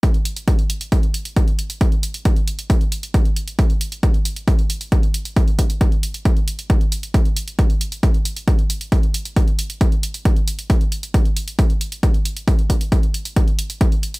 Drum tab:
HH |xxxxxxxxxxxxxxxx|xxxxxxxxxxxxxxxx|xxxxxxxxxxxxxxxx|xxxxxxxxxxxxxxxx|
BD |o---o---o---o---|o---o---o---o---|o---o---o---o---|o-o-o---o---o---|

HH |xxxxxxxxxxxxxxxx|xxxxxxxxxxxxxxxx|xxxxxxxxxxxxxxxx|xxxxxxxxxxxxxxxx|
BD |o---o---o---o---|o---o---o---o---|o---o---o---o---|o-o-o---o---o---|